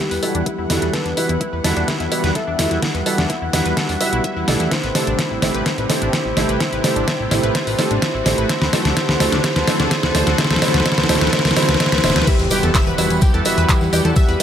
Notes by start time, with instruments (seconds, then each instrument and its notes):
Already playing: analog synth pad E3 G3 B3 F#5, felt piano G3 E4 B4 F#5, soft synth lead G4, riser
0.11 analog synth bass E2, synth pluck B4, open hi-hat
0.23 felt piano G3 E4 F#4 B4, synth pluck A4, open hi-hat
0.35 analog synth bass E2, synth pluck D4, closed hi-hat
0.46 synth pluck E4, kick, closed hi-hat
0.58 analog synth bass E2, synth pluck E4
0.70 analog synth bass E2, felt piano G3 E4 F#4 A4, synth pluck E4, snare, open hi-hat
0.82 analog synth bass E2, synth pluck B4, closed hi-hat
0.93 synth pluck A4, soft synth lead B4, kick, snare, closed hi-hat
1.06 analog synth bass E2, synth pluck D4, closed hi-hat
1.17 felt piano G3 E4 F#4 B4, synth pluck E4, open hi-hat
1.29 analog synth bass E2, synth pluck E4, closed hi-hat
1.41 synth pluck E4, kick, closed hi-hat
1.53 analog synth bass E2, synth pluck B4
1.64 analog synth bass E2, felt piano G3 E4 F#4 B4, synth pluck A4, snare, open hi-hat
1.77 analog synth bass E2, synth pluck D4, closed hi-hat
1.88 synth pluck E4, kick, snare, closed hi-hat
2.00 analog synth bass E2, synth pluck E4, closed hi-hat
2.12 felt piano G3 E4 F#4 B4, synth pluck E4, open hi-hat
2.24 analog synth bass E2, synth pluck B4, snare, closed hi-hat
2.35 synth pluck A4, soft synth lead E5, kick, closed hi-hat
2.47 analog synth bass E2, synth pluck D4
2.59 analog synth bass E2, felt piano G3 E4 F#4 A4, synth pluck E4, snare, open hi-hat
2.71 analog synth bass E2, synth pluck E4, closed hi-hat
2.83 synth pluck E4, soft synth lead F#5, kick, snare, closed hi-hat
2.95 analog synth bass E2, synth pluck B4, closed hi-hat
3.06 felt piano G3 E4 F#4 B4, synth pluck A4, open hi-hat
3.18 analog synth bass E2, synth pluck D4, snare, closed hi-hat
3.30 synth pluck E4, kick, closed hi-hat
3.42 analog synth bass E2, synth pluck E4
3.53 analog synth bass E2, felt piano G3 E4 F#4 B4, synth pluck E4, snare, open hi-hat
3.66 analog synth bass E2, synth pluck B4, closed hi-hat
3.77 synth pluck A4, kick, snare, closed hi-hat
3.89 analog synth bass E2, synth pluck D4, open hi-hat
4.01 felt piano G3 E4 F#4 B4, synth pluck E5, open hi-hat
4.13 analog synth bass B1, synth pluck E4, closed hi-hat
4.24 synth pluck E5, kick, closed hi-hat
4.36 analog synth bass E2, synth pluck E4
4.48 analog synth bass B1, felt piano A3 E4 G4 D5, synth pluck A4, snare, open hi-hat
4.60 analog synth bass E2, synth pluck E4, closed hi-hat
4.71 analog synth pad C3 G3 A3 E4 G4, synth pluck E4, soft synth lead C5, kick, snare, closed hi-hat
4.84 analog synth bass A1, synth pluck B4, closed hi-hat
4.95 felt piano A3 E4 G4 C5, synth pluck A4, snare, open hi-hat
5.07 analog synth bass A1, synth pluck D4, closed hi-hat
5.19 synth pluck E4, kick, snare, closed hi-hat
5.31 analog synth bass A1, synth pluck E4
5.42 analog synth bass A1, felt piano A3 E4 G4 C5, synth pluck E4, snare, open hi-hat
5.54 analog synth bass A1, synth pluck B4, closed hi-hat
5.66 synth pluck E4, soft synth lead C5, kick, snare, closed hi-hat
5.78 analog synth bass A1, synth pluck B4, closed hi-hat
5.90 felt piano A3 E4 G4 C5, synth pluck A4, snare, open hi-hat
6.02 analog synth bass A1, synth pluck D4, closed hi-hat
6.13 synth pluck E4, kick, snare, closed hi-hat
6.25 analog synth bass A1, synth pluck E4
6.37 analog synth bass A1, felt piano A3 E4 G4 C5, synth pluck E4, snare, open hi-hat
6.49 analog synth bass A1, synth pluck B4, closed hi-hat
6.60 synth pluck E4, soft synth lead C5, kick, snare, closed hi-hat
6.73 analog synth bass A1, synth pluck B4, closed hi-hat
6.84 felt piano A3 E4 G4 C5, synth pluck A4, snare, open hi-hat
6.96 analog synth bass A1, synth pluck D4, closed hi-hat
7.08 synth pluck E4, kick, snare, closed hi-hat
7.20 analog synth bass A1, synth pluck E4
7.31 analog synth bass A1, felt piano A3 E4 G4 C5, synth pluck E4, snare, open hi-hat
7.43 analog synth bass A1, synth pluck B4, closed hi-hat
7.55 synth pluck E4, soft synth lead C5, kick, snare, closed hi-hat
7.67 analog synth bass A1, synth pluck B4, open hi-hat
7.78 felt piano A3 E4 G4 C5, synth pluck A4, snare, open hi-hat
7.91 analog synth bass A1, synth pluck D4, closed hi-hat
8.02 synth pluck E4, kick, snare, closed hi-hat
8.14 analog synth bass A1, synth pluck E4
8.26 analog synth bass A1, felt piano A3 E4 G4 C5, synth pluck E4, snare, open hi-hat
8.38 analog synth bass A1, synth pluck B4, closed hi-hat
8.49 analog synth pad D3 F#3 F#4 A4, synth pluck E4, soft synth lead C5, kick, snare, closed hi-hat
8.62 analog synth bass D2, synth pluck B4, snare, closed hi-hat
8.73 felt piano A3 E4 F#4 C5, synth pluck A4, snare, open hi-hat
8.85 analog synth bass D2, synth pluck D4, snare, closed hi-hat
8.97 synth pluck E4, soft synth lead C5, kick, snare, closed hi-hat
9.09 analog synth bass D2, synth pluck B4, snare
9.20 analog synth bass D2, felt piano A3 E4 F#4 C5, synth pluck A4, snare, open hi-hat
9.32 analog synth bass D2, synth pluck D4, snare, closed hi-hat
9.44 synth pluck E4, soft synth lead C5, kick, snare, closed hi-hat
9.56 analog synth bass D2, synth pluck B4, snare, closed hi-hat
9.68 felt piano A3 E4 F#4 C5, synth pluck A4, snare, open hi-hat
9.80 analog synth bass D2, synth pluck D4, snare, closed hi-hat
9.91 synth pluck E4, soft synth lead C5, kick, snare, closed hi-hat
10.03 analog synth bass D2, synth pluck B4, snare
10.15 analog synth bass D2, felt piano A3 E4 F#4 C5, synth pluck A4, snare, open hi-hat
10.27 analog synth bass D2, synth pluck D4, snare, closed hi-hat
10.38 felt piano A3 E4 F#4 C5, synth pluck E4, soft synth lead C5, kick, snare, closed hi-hat
10.44 snare
10.51 analog synth bass D2, synth pluck B4, snare, closed hi-hat
10.56 snare
10.62 felt piano A3 E4 F#4 C5, synth pluck E4, soft synth lead C5, snare, open hi-hat
10.68 snare
10.74 analog synth bass D2, synth pluck B4, snare, closed hi-hat
10.80 snare
10.86 felt piano A3 E4 F#4 C5, synth pluck E4, soft synth lead C5, kick, snare, closed hi-hat
10.92 snare
10.98 analog synth bass D2, synth pluck B4, snare, closed hi-hat
11.04 snare
11.09 analog synth bass D2, felt piano A3 E4 F#4 C5, synth pluck E4, soft synth lead C5, snare, open hi-hat
11.15 snare
11.21 analog synth bass D2, synth pluck B4, snare, closed hi-hat
11.27 snare
11.33 felt piano A3 E4 F#4 C5, synth pluck E4, soft synth lead C5, kick, snare, closed hi-hat
11.39 snare
11.45 analog synth bass D2, synth pluck B4, snare, open hi-hat
11.51 snare
11.56 felt piano A3 E4 F#4 C5, synth pluck E4, soft synth lead C5, snare, open hi-hat
11.63 snare
11.69 analog synth bass D2, synth pluck B4, snare, closed hi-hat
11.74 snare
11.80 felt piano A3 E4 F#4 C5, synth pluck E4, soft synth lead C5, kick, snare, closed hi-hat
11.86 snare
11.92 analog synth bass D2, synth pluck B4, snare, closed hi-hat
11.98 snare
12.04 analog synth bass D1, felt piano A3 E4 F#4 C5, synth pluck E4, soft synth lead C5, snare, open hi-hat
12.10 snare
12.16 analog synth bass D2, synth pluck B4, snare, closed hi-hat
12.22 snare
12.27 analog synth pad E3 G3 B3 F#5, synth pluck E4 E5, soft synth lead G4, kick, closed hi-hat, crash, tambourine, impact
12.39 analog synth bass E2, snare, closed hi-hat, tambourine
12.50 felt piano G3 E4 F#4 B4, synth pluck G4 G5, open hi-hat, tambourine, high conga
12.63 analog synth bass E2, synth pluck A4 A5, closed hi-hat, tambourine
12.74 synth pluck E5 E6, kick, snare, clap, closed hi-hat, open hi-hat, tambourine
12.87 analog synth bass E2, synth pluck B4 B5, closed hi-hat, high conga
12.98 analog synth bass E2, felt piano G3 E4 F#4 B4, synth pluck E4 E5, open hi-hat, tambourine
13.10 analog synth bass E2, closed hi-hat, tambourine
13.21 synth pluck G4 G5, kick, closed hi-hat, tambourine, high conga
13.34 analog synth bass E2, synth pluck A4 A5, closed hi-hat
13.45 felt piano G3 E4 F#4 B4, synth pluck E5 E6, open hi-hat, tambourine
13.57 analog synth bass E2, synth pluck B4 B5, closed hi-hat, tambourine, high conga
13.69 synth pluck E4 E5, soft synth lead G4, kick, snare, clap, closed hi-hat, tambourine, low conga
13.81 analog synth bass E2, snare, tambourine
13.93 analog synth bass E2, felt piano G3 E4 F#4 D5, synth pluck G4 G5, open hi-hat, tambourine
14.05 analog synth bass E2, synth pluck A4 A5, closed hi-hat, tambourine, high conga, low conga
14.16 soft synth lead G4, synth pluck E5 E6, kick, closed hi-hat, tambourine
14.29 analog synth bass E2, synth pluck B4 B5, closed hi-hat, tambourine
14.40 snare